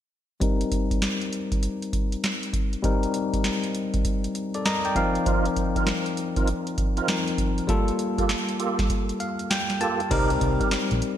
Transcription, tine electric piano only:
0.40 2.79 G3 medium
0.40 2.80 C4 medium
0.40 2.80 D#4 medium
0.40 2.81 A#4 medium
2.83 4.91 G3 medium
2.83 4.92 C4 medium
2.83 4.92 D#4 medium
2.83 4.33 A#4 medium
4.55 4.65 A4 medium
4.55 4.65 D5 medium
4.66 4.84 A#4 medium
4.66 4.84 D#5 medium
4.66 4.94 A#5 medium
4.85 5.14 D5 medium
4.85 5.14 G5 medium
4.95 7.04 F3 medium
4.95 7.04 C4 medium
4.95 7.04 D#4 medium
4.95 7.05 A#4 medium
4.95 5.24 F5 medium
7.08 7.68 F3 medium
7.08 7.69 C4 medium
7.08 7.69 D#4 soft
7.08 7.69 A#4 medium
7.67 10.06 G3 medium
7.67 10.07 A#3 medium
7.67 10.07 F4 medium
7.67 10.08 A4 medium
9.20 9.48 F5 medium
9.50 9.79 G5 medium
9.81 10.09 A5 medium
10.10 11.18 G3 medium
10.10 11.18 C4 medium
10.10 11.18 D#4 medium
10.10 11.18 A#4 loud

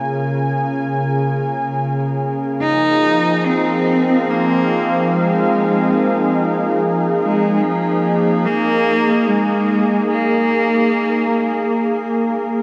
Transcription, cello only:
2.62 3.47 D#4 loud
3.46 4.31 C4 medium
4.29 5.13 A#3 medium
5.12 6.78 G#3 medium
7.22 7.63 G#3 medium
7.62 8.47 F3 medium
8.46 9.28 A#3 loud
9.27 10.10 G#3 medium
10.11 11.77 A#3 medium

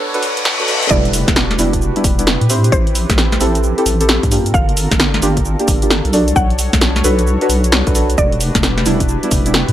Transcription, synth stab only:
0.00 0.11 D4 medium
0.00 0.11 F#4 medium
0.00 0.11 A4 medium
0.00 0.11 B4 loud
0.14 0.21 D4 medium
0.14 0.21 F#4 medium
0.14 0.21 A4 medium
0.14 0.21 B4 loud
0.59 0.66 D4 medium
0.59 0.66 F#4 medium
0.59 0.66 A4 medium
0.59 0.66 B4 medium
0.68 0.79 D4 medium
0.68 0.79 F#4 medium
0.68 0.79 A4 medium
0.68 0.80 B4 loud
0.91 1.55 G3 loud
0.91 1.55 B3 medium
0.91 1.55 D4 medium
0.91 1.55 E4 loud
1.59 1.70 G3 loud
1.59 1.70 B3 medium
1.59 1.70 D4 medium
1.59 1.70 E4 loud
1.96 2.15 G3 medium
1.96 2.15 B3 medium
1.96 2.15 D4 medium
1.96 2.15 E4 medium
2.19 2.25 G3 medium
2.19 2.25 B3 medium
2.19 2.25 D4 medium
2.19 2.25 E4 medium
2.50 2.67 C4 medium
2.50 2.67 E4 medium
2.50 2.67 G4 medium
2.50 2.67 C5 medium
3.41 3.74 C4 medium
3.41 3.74 E4 medium
3.41 3.74 G4 medium
3.41 3.74 A4 loud
3.78 3.84 C4 loud
3.78 3.84 E4 medium
3.78 3.84 G4 medium
3.78 3.84 A4 loud
4.00 4.07 C4 medium
4.00 4.07 E4 medium
4.00 4.07 G4 medium
4.00 4.07 A4 medium
4.09 4.20 C4 medium
4.09 4.20 E4 medium
4.09 4.20 G4 medium
4.09 4.20 A4 medium
4.32 4.43 A#3 medium
4.32 4.43 D4 medium
4.32 4.43 F4 medium
4.32 4.43 G4 medium
5.22 5.34 A#3 loud
5.22 5.34 D4 medium
5.22 5.34 F4 medium
5.22 5.34 G4 loud
5.60 5.79 A#3 medium
5.60 5.79 D4 medium
5.60 5.79 F4 medium
5.60 5.79 G4 medium
5.82 5.89 A#3 medium
5.82 5.89 D4 medium
5.82 5.89 F4 medium
5.82 5.89 G4 medium
6.13 6.30 D4 medium
6.13 6.30 F#4 medium
6.13 6.30 A4 medium
6.13 6.30 D5 medium
7.04 7.38 D4 loud
7.04 7.38 F#4 medium
7.04 7.38 A4 medium
7.04 7.38 B4 loud
7.41 7.48 D4 loud
7.41 7.48 F#4 medium
7.41 7.48 A4 medium
7.41 7.48 B4 loud
7.87 7.94 D4 medium
7.87 7.94 F#4 medium
7.87 7.94 A4 medium
7.87 7.94 B4 medium
7.95 8.07 D4 medium
7.95 8.07 F#4 medium
7.95 8.07 A4 medium
7.95 8.07 B4 loud
8.86 8.98 G3 loud
8.86 8.98 B3 medium
8.86 8.98 D4 medium
8.86 8.98 E4 loud
9.23 9.43 G3 medium
9.23 9.43 B3 medium
9.23 9.43 D4 medium
9.23 9.43 E4 medium
9.46 9.53 G3 medium
9.46 9.53 B3 medium
9.46 9.53 D4 medium
9.46 9.53 E4 medium

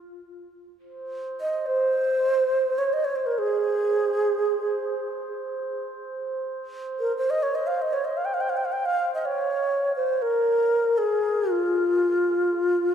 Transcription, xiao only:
1.41 1.68 D#5 medium
1.66 2.80 C5 medium
2.78 2.95 C#5 medium
2.93 3.06 D#5 medium
3.05 3.17 C#5 medium
3.16 3.28 C5 medium
3.26 3.40 A#4 medium
3.38 5.25 G#4 medium
7.00 7.16 A#4 medium
7.18 7.32 C5 medium
7.30 7.44 D#5 medium
7.43 7.57 C#5 medium
7.55 7.68 D#5 medium
7.67 7.83 F5 medium
7.82 7.94 D#5 medium
7.93 8.06 C#5 medium
8.05 8.19 D#5 medium
8.17 8.27 F5 medium
8.25 8.35 G5 medium
8.34 8.42 F5 medium
8.41 8.51 G5 medium
8.50 8.58 F5 medium
8.57 8.67 G5 medium
8.65 8.74 F5 medium
8.72 8.87 G5 medium
8.86 9.14 F5 medium
9.15 9.27 D#5 medium
9.25 9.93 C#5 medium
9.96 10.23 C5 medium
10.22 10.99 A#4 medium
10.98 11.52 G#4 medium
11.50 12.95 F4 medium

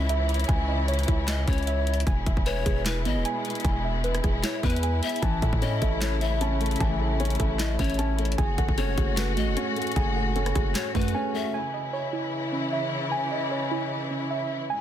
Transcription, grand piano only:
5.23 6.21 E3 medium
5.42 6.41 A3 medium
5.62 6.39 C#4 medium
5.82 6.20 E4 medium
6.21 7.20 E4 medium
6.41 7.18 C#4 medium
6.61 6.99 A3 medium
6.80 7.79 E3 medium
7.00 7.99 A3 medium
7.20 7.97 C#4 medium
7.40 7.78 E4 medium
7.79 8.38 E4 medium
7.99 8.38 C#4 medium
8.19 8.38 A3 medium
8.38 9.37 G#4 medium
8.58 9.57 A3 medium
8.78 9.55 C#4 loud
8.98 9.36 F#4 medium
9.37 10.36 F#4 medium
9.57 10.34 C#4 loud
9.76 10.14 A3 medium
9.96 10.95 G#4 loud
10.16 11.15 A3 medium
10.36 11.13 C#4 medium
10.55 10.93 F#4 medium
10.95 11.54 F#4 medium
11.15 11.54 C#4 loud
11.34 11.54 A3 medium

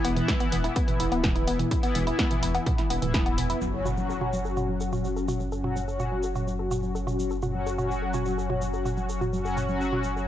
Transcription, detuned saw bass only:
0.05 0.21 E1 loud
0.52 0.69 E1 medium
1.00 1.08 E1 medium
1.12 1.49 D1 medium
1.48 1.64 E1 medium
1.95 2.12 E1 loud
2.43 2.59 E1 medium
2.90 2.99 E1 medium
3.02 3.39 D1 medium
3.38 3.54 E1 medium
3.62 10.28 F#1 medium

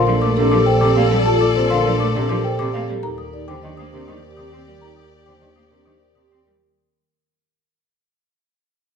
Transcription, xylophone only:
0.00 0.11 C6 medium
0.22 0.41 D6 medium
0.51 0.71 D6 medium
0.66 0.85 G5 medium
0.81 1.00 D6 medium
1.26 1.45 A5 loud
1.41 1.60 D6 medium
1.70 1.89 C6 medium
2.00 2.19 D6 medium
2.29 2.49 D6 medium
2.44 2.64 G5 medium
2.59 2.78 D6 medium
3.03 3.23 A#5 loud
3.18 3.38 D#6 medium
3.48 3.67 D6 medium
3.77 3.97 D#6 medium
4.07 4.27 D#6 medium
4.37 4.56 D#6 medium
4.81 5.01 A#5 medium
4.97 5.16 D#6 medium
5.26 5.46 D6 medium
5.56 5.75 D#6 medium
5.86 6.05 D#6 medium
6.15 6.35 D#6 medium

